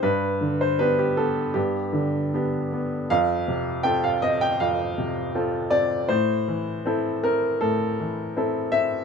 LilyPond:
\new Staff \with { instrumentName = "Upright piano" } { \time 4/4 \key g \minor \tempo 4 = 80 << { b'8. c''16 b'16 g'16 a'8 g'4. r8 | f''4 g''16 f''16 ees''16 g''16 f''4. d''8 | c''4. bes'8 a'4. e''8 | } \\ { g,8 d8 <b d' g'>8 b8 g,8 d8 <b d' g'>8 b8 | f,8 c8 <c' f' a'>8 c'8 f,8 c8 <c' f' a'>8 c'8 | a,8 e8 <c' e' a'>8 c'8 a,8 e8 <c' e' a'>8 c'8 | } >> }